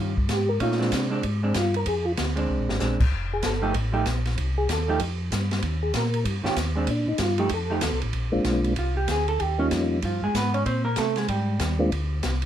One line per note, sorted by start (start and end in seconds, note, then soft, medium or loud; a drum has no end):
0.00 0.28 G2 medium
0.00 0.13 D#3 medium
0.00 0.13 G3 medium
0.00 0.13 C#4 medium
0.00 0.13 F4 medium
0.17 kick soft
0.29 0.59 G#2 medium
0.29 kick soft
0.29 snare medium
0.29 hi-hat pedal medium
0.29 ride medium
0.33 0.50 G4 medium
0.49 0.60 A#4 loud
0.60 0.91 A#2 medium
0.60 0.78 A3 medium
0.60 0.78 C#4 medium
0.60 0.78 D#4 medium
0.60 0.80 F4 medium
0.60 kick soft
0.60 ride medium
0.71 snare soft
0.79 1.07 G#3 medium
0.79 1.07 C4 medium
0.79 1.08 D4 medium
0.79 0.92 F4 medium
0.79 snare soft
0.92 1.22 C3 loud
0.92 kick soft
0.92 snare medium
0.92 hi-hat pedal medium
0.92 ride medium
1.10 1.21 G#3 medium
1.10 1.22 C4 medium
1.10 1.22 D4 medium
1.23 1.54 G#2 medium
1.23 kick soft
1.23 ride medium
1.43 1.53 G#3 medium
1.43 1.54 C4 medium
1.43 1.54 D4 medium
1.54 1.85 G2 loud
1.54 1.75 F4 medium
1.54 kick soft
1.54 snare medium
1.54 hi-hat pedal medium
1.54 ride medium
1.74 1.87 A#4 loud
1.74 ride soft
1.86 2.16 F2 medium
1.86 2.06 G#4 medium
1.86 kick soft
1.86 ride medium
2.05 2.12 F4 loud
2.17 2.48 D2 medium
2.17 kick soft
2.17 snare medium
2.17 hi-hat pedal medium
2.17 ride medium
2.35 2.77 G#3 medium
2.35 2.77 C4 medium
2.35 2.78 D4 medium
2.35 ride soft
2.50 2.59 C2 medium
2.59 2.70 A#1 medium
2.69 2.80 G#1 medium
2.69 snare medium
2.80 2.99 A#1 medium
2.80 2.98 G#3 medium
2.80 2.98 C4 medium
2.80 2.98 D4 medium
2.80 snare medium
2.80 hi-hat pedal medium
3.00 3.06 A#1 soft
3.00 kick medium
3.00 crash medium
3.12 3.42 F1 medium
3.12 kick soft
3.33 3.44 G#4 medium
3.42 3.74 G1 medium
3.42 3.74 A4 medium
3.42 kick soft
3.42 snare medium
3.42 hi-hat pedal medium
3.42 ride medium
3.62 3.73 F3 medium
3.62 3.73 A3 medium
3.62 3.73 D#4 medium
3.62 3.73 G4 medium
3.74 4.05 A1 medium
3.74 kick soft
3.74 ride medium
3.92 4.04 F3 medium
3.92 4.04 A3 medium
3.92 4.04 D#4 medium
3.92 4.04 G4 medium
4.06 4.36 A#1 medium
4.06 kick soft
4.06 snare medium
4.06 hi-hat pedal medium
4.06 ride medium
4.25 snare soft
4.25 ride soft
4.38 4.68 C2 medium
4.38 kick soft
4.38 ride medium
4.58 4.69 G#4 medium
4.69 4.99 D#2 medium
4.69 5.00 A4 medium
4.69 kick soft
4.69 snare medium
4.69 hi-hat pedal medium
4.69 ride medium
4.88 4.99 F3 medium
4.88 4.99 A3 medium
4.88 4.99 D#4 medium
4.88 4.99 G4 medium
5.00 5.31 F2 medium
5.00 kick soft
5.00 ride medium
5.32 5.62 G2 loud
5.32 kick soft
5.32 snare medium
5.32 hi-hat pedal medium
5.32 ride medium
5.51 snare medium
5.51 ride soft
5.62 5.93 D#2 medium
5.62 kick soft
5.62 ride medium
5.83 5.94 G#4 medium
5.94 6.24 A#2 medium
5.94 6.25 A#4 medium
5.94 kick soft
5.94 snare medium
5.94 hi-hat pedal medium
5.94 ride medium
6.14 ride medium
6.25 6.42 G2 loud
6.25 kick soft
6.25 ride medium
6.44 6.50 G2 soft
6.44 6.55 D#3 medium
6.44 6.55 C#4 medium
6.44 6.55 F4 medium
6.44 6.56 G4 medium
6.44 snare medium
6.57 6.87 D#2 loud
6.57 kick soft
6.57 snare medium
6.57 hi-hat pedal medium
6.57 ride medium
6.76 6.87 G#3 medium
6.76 6.87 C4 medium
6.76 6.87 D4 medium
6.87 7.06 A#2 medium
6.87 7.08 D4 medium
6.87 kick soft
6.87 ride medium
7.07 7.13 A#2 soft
7.07 7.19 D#4 loud
7.18 7.50 G2 medium
7.18 7.40 F4 medium
7.18 kick soft
7.18 snare medium
7.18 hi-hat pedal medium
7.18 ride medium
7.38 7.49 F3 medium
7.38 7.50 A3 medium
7.38 7.50 D#4 medium
7.38 7.51 G4 medium
7.38 7.50 G4 medium
7.38 ride soft
7.49 7.81 F2 medium
7.49 kick soft
7.49 ride medium
7.54 8.00 A4 medium
7.70 7.81 F3 medium
7.70 7.81 A3 medium
7.70 7.81 D#4 medium
7.70 7.82 G4 medium
7.81 7.92 D#2 loud
7.81 kick soft
7.81 snare medium
7.81 hi-hat pedal medium
7.81 ride medium
7.93 8.03 C2 medium
8.02 8.13 A1 medium
8.02 ride soft
8.13 8.32 A#1 medium
8.13 kick soft
8.13 ride medium
8.32 8.40 A#1 soft
8.32 8.74 G#3 medium
8.32 8.74 A#3 medium
8.32 8.74 C4 medium
8.32 8.74 D4 medium
8.32 8.74 F4 medium
8.44 8.75 B1 medium
8.44 kick soft
8.44 snare medium
8.44 hi-hat pedal soft
8.44 ride medium
8.64 ride soft
8.76 9.07 C2 medium
8.76 8.97 F4 medium
8.76 kick soft
8.76 ride medium
8.97 9.08 G4 medium
9.08 9.38 D2 medium
9.08 9.28 G#4 medium
9.08 kick soft
9.08 snare medium
9.08 hi-hat pedal medium
9.08 ride medium
9.28 9.42 A4 loud
9.28 ride soft
9.40 9.70 D#2 medium
9.40 9.60 G4 medium
9.40 kick soft
9.40 ride medium
9.58 10.00 G3 medium
9.58 10.00 A#3 medium
9.58 10.00 C#4 medium
9.58 9.67 C#4 medium
9.58 10.00 D#4 medium
9.58 10.00 F4 medium
9.71 10.02 F2 medium
9.71 kick soft
9.71 snare medium
9.71 hi-hat pedal medium
9.71 ride medium
10.02 10.21 G2 medium
10.02 10.23 F3 medium
10.02 10.23 F4 medium
10.02 kick soft
10.02 ride medium
10.22 10.28 G2 soft
10.22 10.34 G#3 medium
10.22 10.34 G#4 medium
10.34 10.65 G#2 medium
10.34 10.55 B3 medium
10.34 10.54 B4 medium
10.34 kick soft
10.34 snare medium
10.34 hi-hat pedal medium
10.34 ride medium
10.54 10.65 C#4 medium
10.54 10.65 C#5 medium
10.54 ride soft
10.66 10.96 A#2 medium
10.66 10.85 C4 medium
10.66 10.84 C5 medium
10.66 kick soft
10.66 ride medium
10.84 10.96 A#3 medium
10.84 10.96 A#4 medium
10.96 11.28 C3 medium
10.96 11.17 A3 medium
10.96 11.17 A4 medium
10.96 kick soft
10.96 snare medium
10.96 hi-hat pedal medium
10.96 ride medium
11.16 11.29 G#3 medium
11.16 11.28 G#4 medium
11.16 snare soft
11.16 ride soft
11.28 11.59 G#2 medium
11.28 11.88 G3 medium
11.28 11.88 G4 medium
11.28 kick soft
11.28 ride medium
11.60 11.91 D#2 loud
11.60 kick soft
11.60 snare medium
11.60 hi-hat pedal medium
11.60 ride medium
11.79 11.90 G#3 medium
11.79 11.90 A#3 medium
11.79 11.90 C4 medium
11.79 11.90 D4 medium
11.79 11.91 F4 medium
11.92 12.22 D2 medium
11.92 kick soft
11.92 ride medium
12.23 12.46 C2 medium
12.23 kick soft
12.23 snare medium
12.23 hi-hat pedal medium
12.23 ride medium
12.42 ride medium